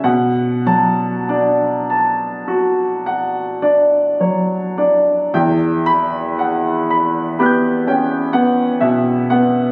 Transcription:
<<
  \new Staff \with { instrumentName = "Grand piano" } { \time 9/8 \key e \dorian \tempo 4. = 39 << { r8 a''4 r2. | r8 b''4 r8 <b'' fis''' g'''>2~ <b'' fis''' g'''>8 | } \\ { fis''4 d''8 a''8 fis'8 fis''8 d''8 cis''8 d''8 | g''4 fis''8 b''8 g'8 g''8 fis''8 e''8 fis''8 | } >> }
  \new Staff \with { instrumentName = "Grand piano" } { \time 9/8 \key e \dorian b,8 fis8 d'4 r4 d'8 fis8 d'8 | e,2 b8 cis'8 b8 b,8 b8 | }
>>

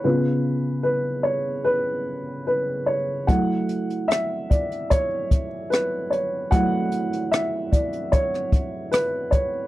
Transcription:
<<
  \new Staff \with { instrumentName = "Upright piano" } { \time 4/4 \key fis \minor \tempo 4 = 74 b'4 b'8 cis''8 b'4 b'8 cis''8 | fis''4 e''8 d''8 cis''4 b'8 cis''8 | fis''4 e''8 d''8 cis''4 b'8 cis''8 | }
  \new Staff \with { instrumentName = "Upright piano" } { \time 4/4 \key fis \minor <cis b eis'>4. r2 r8 | <fis a e'>4. r2 r8 | <fis a e'>4. r2 r8 | }
  \new DrumStaff \with { instrumentName = "Drums" } \drummode { \time 4/4 r4 r4 r4 r4 | <hh bd>8 hh16 hh16 <hh ss>8 <hh bd>16 hh16 <hh bd>8 <hh bd>8 <hh ss>8 hh8 | <hh bd>8 hh16 hh16 <hh ss>8 <hh bd>16 hh16 <hh bd>16 ss16 <hh bd>8 <hh ss>8 <hh bd>8 | }
>>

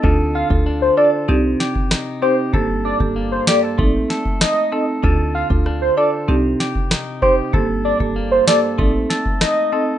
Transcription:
<<
  \new Staff \with { instrumentName = "Soft synth lead" } { \time 4/4 \key g \minor \tempo 4 = 96 r8 f''16 r8 c''16 d''16 r4. r16 c''16 r16 | r8 d''16 r8 c''16 d''16 r4 r16 ees''8. r16 | r8 f''16 r8 c''16 d''16 r4. r16 c''16 r16 | r8 d''16 r8 c''16 d''16 r4 r16 ees''8. r16 | }
  \new Staff \with { instrumentName = "Clean electric guitar" } { \time 4/4 \key g \minor <d a'>8 f'8 d'8 a'8 c8 g'8 ees'8 g'8 | <g, a'>8 d'8 bes8 g'16 a'16 a8 a'8 ees'8 a'8 | <d a'>8 f'8 d'8 a'8 c8 g'8 ees'8 g'8 | <g, a'>8 d'8 bes8 a'8 a8 a'8 ees'8 a'8 | }
  \new Staff \with { instrumentName = "Marimba" } { \time 4/4 \key g \minor <d' f' a'>16 r8 <d' f' a'>16 r8 <d' f' a'>16 r16 <c' ees' g'>4. <c' ees' g'>16 r16 | <bes g' a'>16 r8 <bes g' a'>16 r8 <bes g' a'>16 r16 <c' ees' a'>4. <c' ees' a'>16 r16 | <d' f' a'>16 r8 <d' f' a'>16 r8 <d' f' a'>16 r16 <c' ees' g'>4. <c' ees' g'>16 r16 | <bes g' a'>16 r8 <bes g' a'>16 r8 <bes g' a'>16 r16 <c' ees' a'>4. <c' ees' a'>16 r16 | }
  \new Staff \with { instrumentName = "808-style bass" } { \clef bass \time 4/4 \key g \minor d,8. d,8. r8 c,8 r4. | g,,8. g,,8. r8 a,,8 r4. | d,8. d,8. r8 c,8 r4. | g,,8. g,,8. r8 a,,8 r4. | }
  \new DrumStaff \with { instrumentName = "Drums" } \drummode { \time 4/4 bd8. bd16 r4 r8 sn16 bd16 <ss sn>4 | bd8. bd16 r8 sn8 bd8 sn16 bd16 <ss sn>4 | bd8. bd16 ss4 r8 sn16 bd16 <ss sn>8 bd8 | bd8. bd16 r8 sn8 bd8 sn16 bd16 <ss sn>4 | }
>>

